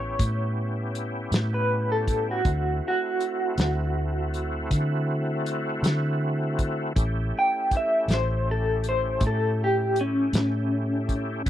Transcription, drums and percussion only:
0.19 kick medium
0.19 closed hi-hat medium
0.95 closed hi-hat medium
1.32 snare loud
1.32 closed hi-hat medium
2.07 kick medium
2.07 closed hi-hat soft
2.45 kick medium
2.45 closed hi-hat medium
3.20 closed hi-hat soft
3.58 snare medium
3.58 closed hi-hat medium
4.34 closed hi-hat medium
4.71 kick medium
4.71 closed hi-hat medium
5.46 closed hi-hat medium
5.84 snare loud
5.84 closed hi-hat medium
6.59 kick medium
6.59 closed hi-hat soft
6.96 kick medium
6.96 closed hi-hat medium
7.71 kick medium
7.71 closed hi-hat medium
8.08 snare medium
8.08 closed hi-hat medium
8.84 closed hi-hat medium
9.21 kick medium
9.21 closed hi-hat medium
9.96 closed hi-hat soft
10.33 snare medium
10.33 closed hi-hat medium
11.09 kick medium
11.09 closed hi-hat soft
11.46 kick medium
11.46 closed hi-hat medium

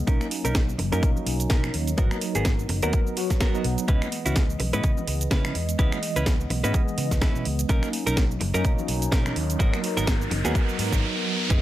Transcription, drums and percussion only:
0.07 kick loud
0.07 closed hi-hat medium
0.07 shaker soft
0.21 finger snap medium
0.21 high conga medium
0.21 shaker soft
0.31 open hi-hat loud
0.45 closed hi-hat soft
0.45 shaker soft
0.45 shaker medium
0.55 kick loud
0.55 snare loud
0.55 closed hi-hat medium
0.55 shaker medium
0.69 shaker soft
0.78 open hi-hat medium
0.78 low conga medium
0.78 shaker medium
0.92 closed hi-hat soft
0.92 high conga medium
0.92 shaker soft
0.92 shaker medium
1.03 kick loud
1.03 closed hi-hat medium
1.03 shaker medium
1.16 low conga medium
1.16 shaker soft
1.26 open hi-hat loud
1.26 shaker medium
1.40 closed hi-hat soft
1.40 shaker medium
1.50 kick loud
1.50 snare loud
1.50 closed hi-hat medium
1.50 shaker medium
1.64 finger snap medium
1.64 low conga medium
1.64 shaker soft
1.74 open hi-hat medium
1.87 closed hi-hat soft
1.87 shaker medium
1.87 shaker soft
1.98 kick loud
1.98 closed hi-hat medium
1.98 shaker medium
2.11 finger snap medium
2.11 high conga medium
2.11 shaker soft
2.21 open hi-hat loud
2.21 shaker medium
2.35 closed hi-hat soft
2.35 shaker medium
2.45 kick loud
2.45 snare loud
2.45 closed hi-hat medium
2.45 shaker medium
2.59 shaker soft
2.69 open hi-hat medium
2.69 low conga medium
2.69 shaker medium
2.83 closed hi-hat soft
2.83 high conga medium
2.83 shaker medium
2.83 shaker soft
2.93 kick loud
2.93 closed hi-hat medium
2.93 shaker medium
3.07 shaker soft
3.17 open hi-hat loud
3.17 shaker medium
3.30 kick medium
3.30 snare soft
3.30 closed hi-hat medium
3.30 shaker medium
3.41 finger snap medium
3.41 kick loud
3.41 snare loud
3.41 closed hi-hat medium
3.41 shaker medium
3.55 shaker soft
3.64 open hi-hat medium
3.78 closed hi-hat soft
3.78 shaker medium
3.88 kick loud
3.88 closed hi-hat medium
3.88 shaker medium
4.02 finger snap medium
4.02 high conga medium
4.02 shaker soft
4.12 open hi-hat loud
4.12 shaker medium
4.26 closed hi-hat medium
4.26 shaker medium
4.36 kick loud
4.36 snare loud
4.36 closed hi-hat medium
4.36 shaker medium
4.50 shaker soft
4.60 open hi-hat medium
4.60 low conga medium
4.60 shaker medium
4.73 closed hi-hat soft
4.73 high conga medium
4.73 shaker medium
4.73 shaker soft
4.84 kick loud
4.84 closed hi-hat medium
4.84 shaker medium
4.97 low conga medium
4.97 shaker soft
5.07 open hi-hat loud
5.07 shaker medium
5.21 closed hi-hat soft
5.21 shaker medium
5.31 kick loud
5.31 snare loud
5.31 closed hi-hat medium
5.31 shaker medium
5.45 finger snap medium
5.45 low conga medium
5.45 shaker soft
5.55 open hi-hat medium
5.55 shaker medium
5.69 closed hi-hat soft
5.69 shaker medium
5.79 kick loud
5.79 closed hi-hat medium
5.79 shaker medium
5.92 finger snap medium
5.92 high conga medium
5.92 shaker soft
6.03 open hi-hat loud
6.03 shaker medium
6.16 closed hi-hat medium
6.16 shaker medium
6.26 kick loud
6.26 snare loud
6.26 closed hi-hat medium
6.26 shaker medium
6.40 shaker soft
6.50 open hi-hat medium
6.50 low conga medium
6.50 shaker medium
6.63 closed hi-hat medium
6.63 high conga medium
6.63 shaker medium
6.63 shaker soft
6.74 kick loud
6.74 closed hi-hat medium
6.74 shaker medium
6.88 shaker soft
6.98 open hi-hat loud
6.98 shaker loud
7.11 kick medium
7.11 snare soft
7.11 closed hi-hat soft
7.11 shaker medium
7.22 finger snap medium
7.22 kick loud
7.22 snare loud
7.22 closed hi-hat medium
7.22 shaker medium
7.35 shaker soft
7.45 open hi-hat medium
7.45 shaker medium
7.59 closed hi-hat medium
7.59 shaker medium
7.69 kick loud
7.69 closed hi-hat medium
7.69 shaker medium
7.83 finger snap medium
7.83 high conga medium
7.83 shaker soft
7.93 open hi-hat loud
7.93 shaker medium
8.07 closed hi-hat medium
8.07 shaker soft
8.07 shaker medium
8.17 kick loud
8.17 snare loud
8.17 closed hi-hat medium
8.17 shaker medium
8.31 shaker soft
8.41 open hi-hat medium
8.41 low conga medium
8.41 shaker medium
8.54 closed hi-hat medium
8.54 high conga medium
8.54 shaker soft
8.54 shaker medium
8.65 kick loud
8.65 closed hi-hat medium
8.65 shaker medium
8.79 low conga medium
8.79 shaker soft
8.88 open hi-hat loud
8.88 shaker loud
9.02 closed hi-hat medium
9.02 shaker medium
9.12 kick loud
9.12 snare loud
9.12 closed hi-hat medium
9.12 shaker medium
9.26 finger snap medium
9.26 low conga medium
9.26 shaker soft
9.36 open hi-hat medium
9.36 shaker medium
9.50 closed hi-hat medium
9.50 shaker medium
9.60 kick loud
9.60 closed hi-hat medium
9.60 shaker medium
9.73 finger snap medium
9.73 high conga medium
9.73 shaker soft
9.83 open hi-hat loud
9.83 shaker loud
9.97 closed hi-hat medium
9.97 shaker medium
10.07 kick loud
10.07 snare loud
10.07 closed hi-hat medium
10.07 shaker medium
10.21 shaker soft
10.31 open hi-hat medium
10.31 low conga medium
10.31 shaker medium
10.45 closed hi-hat medium
10.45 high conga medium
10.45 shaker soft
10.45 shaker medium
10.55 kick loud
10.55 closed hi-hat medium
10.55 shaker medium
10.69 shaker soft
10.79 open hi-hat loud
10.79 shaker loud
10.92 kick medium
10.92 snare soft
10.92 closed hi-hat medium
10.92 shaker medium
11.50 kick loud
11.50 closed hi-hat medium
11.50 shaker soft

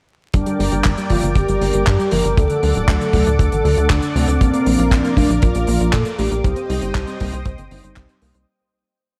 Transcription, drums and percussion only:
0.34 kick loud
0.34 closed hi-hat medium
0.46 closed hi-hat medium
0.60 open hi-hat loud
0.72 closed hi-hat medium
0.84 kick loud
0.84 clap loud
0.84 closed hi-hat medium
0.97 closed hi-hat medium
1.10 kick medium
1.10 open hi-hat loud
1.24 closed hi-hat medium
1.35 kick loud
1.35 closed hi-hat medium
1.48 closed hi-hat medium
1.61 open hi-hat loud
1.73 closed hi-hat medium
1.87 kick loud
1.87 clap loud
1.87 closed hi-hat medium
2.00 closed hi-hat medium
2.11 open hi-hat loud
2.25 closed hi-hat medium
2.37 kick loud
2.37 closed hi-hat medium
2.50 closed hi-hat medium
2.63 open hi-hat loud
2.75 closed hi-hat medium
2.88 kick loud
2.88 clap loud
2.88 closed hi-hat medium
3.01 closed hi-hat medium
3.13 kick medium
3.13 open hi-hat loud
3.26 closed hi-hat medium
3.39 kick loud
3.39 closed hi-hat loud
3.52 closed hi-hat medium
3.65 open hi-hat medium
3.78 closed hi-hat medium
3.90 kick loud
3.90 clap loud
3.90 closed hi-hat medium
4.02 closed hi-hat medium
4.16 open hi-hat loud
4.28 closed hi-hat medium
4.41 kick loud
4.41 closed hi-hat loud
4.54 closed hi-hat medium
4.66 open hi-hat loud
4.78 closed hi-hat medium
4.91 kick loud
4.91 clap loud
4.91 closed hi-hat loud
5.05 closed hi-hat medium
5.17 kick medium
5.17 open hi-hat loud
5.30 closed hi-hat medium
5.42 kick loud
5.42 closed hi-hat loud
5.55 closed hi-hat medium
5.67 open hi-hat loud
5.80 closed hi-hat soft
5.93 kick loud
5.93 clap loud
5.93 closed hi-hat medium
6.05 closed hi-hat medium
6.19 open hi-hat loud
6.32 closed hi-hat medium
6.44 kick loud
6.44 closed hi-hat medium
6.56 closed hi-hat medium
6.70 open hi-hat loud
6.82 closed hi-hat medium
6.95 kick loud
6.95 clap loud
6.95 closed hi-hat loud
7.07 closed hi-hat medium
7.20 kick medium
7.20 open hi-hat loud
7.33 closed hi-hat soft
7.45 kick loud
7.45 closed hi-hat medium
7.58 closed hi-hat medium
7.71 open hi-hat loud
7.84 closed hi-hat medium
7.96 kick loud
7.96 clap loud
7.96 closed hi-hat medium
8.09 closed hi-hat medium
8.22 open hi-hat loud
8.34 closed hi-hat medium

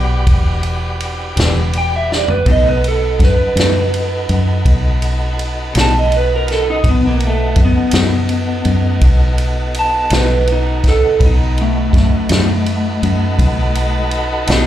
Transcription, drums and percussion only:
0.27 kick medium
0.27 ride medium
0.63 ride medium
1.00 ride medium
1.37 snare loud
1.37 ride medium
1.73 ride medium
2.12 snare medium
2.28 floor tom medium
2.46 kick loud
2.46 ride medium
2.84 ride medium
3.20 kick medium
3.20 snare soft
3.20 ride medium
3.57 snare loud
3.57 ride medium
3.94 ride medium
4.29 ride medium
4.65 kick loud
4.65 ride medium
5.02 ride medium
5.39 ride medium
5.75 snare loud
5.75 ride medium
6.12 ride medium
6.48 snare soft
6.48 ride medium
6.84 kick loud
6.84 ride medium
7.20 ride medium
7.56 kick medium
7.56 ride medium
7.91 snare loud
7.91 ride medium
8.29 ride medium
8.65 ride medium
9.01 kick loud
9.01 ride medium
9.38 ride medium
9.74 ride medium
10.10 snare loud
10.10 ride medium
10.47 ride medium
10.84 kick medium
10.84 snare soft
10.84 ride medium
11.20 kick medium
11.20 ride medium
11.58 ride soft
11.93 kick medium
11.93 snare soft
11.93 ride medium
12.29 snare loud
12.29 ride medium
12.66 ride medium
13.03 ride medium
13.39 kick medium
13.39 ride medium
13.75 ride medium
14.11 ride medium
14.47 snare loud
14.47 ride medium

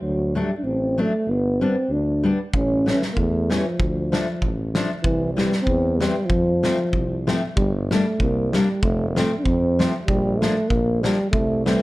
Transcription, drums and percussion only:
2.54 kick medium
2.88 snare medium
3.02 snare soft
3.17 kick soft
3.50 snare medium
3.80 kick medium
4.13 snare medium
4.42 kick medium
4.75 snare medium
5.04 kick medium
5.38 snare medium
5.52 snare soft
5.67 kick soft
6.01 snare medium
6.30 kick medium
6.64 snare medium
6.93 kick soft
7.28 snare medium
7.57 kick medium
7.91 snare medium
8.20 kick medium
8.53 snare medium
8.83 kick medium
9.17 snare medium
9.46 kick medium
9.80 snare medium
10.08 kick medium
10.42 snare medium
10.70 kick medium
11.04 snare medium
11.33 kick medium
11.66 snare medium

